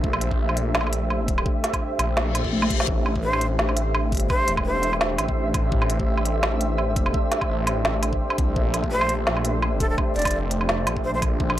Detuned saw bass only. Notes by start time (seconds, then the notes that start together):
0.04 A#1
0.75 A#1
1.99 A#1
2.88 A1
3.59 A1
4.08 G#1
4.48 E1
5.19 A1
5.54 A1
5.72 A1
6.43 A1
7.49 A1
8.38 C2
8.56 A#1
9.27 A#1
10.16 F1
10.87 A#1
11.22 A#1
11.40 A#1